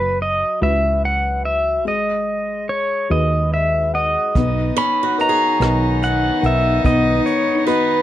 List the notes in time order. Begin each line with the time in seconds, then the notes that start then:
Already playing: F#1 F#3 B4
0.22 D#5
0.61 C#2 E4 F#4 B4 E5
1.05 F#5
1.45 E5
1.85 G#1 G#3 D#5
2.69 C#5
3.10 D#2 F#4 G#4 B4 D#5
3.52 D#5 E5
3.94 D#5 F#5
4.35 B1 D#3 B3 D#4, kick, closed hi-hat
4.77 C#4 B5, closed hi-hat
5.03 F#4
5.18 A#4 B4 D#5 A#5, closed hi-hat
5.29 G#4
5.60 B1 A#4 B4 D#5, cross-stick, closed hi-hat
6.03 F#5, closed hi-hat
6.42 B1 A#4 B4 F#5, closed hi-hat
6.46 E5
6.84 B1 B3 D#5, kick, closed hi-hat
7.26 C#5, closed hi-hat
7.67 B3 F#4 B4 D#5, closed hi-hat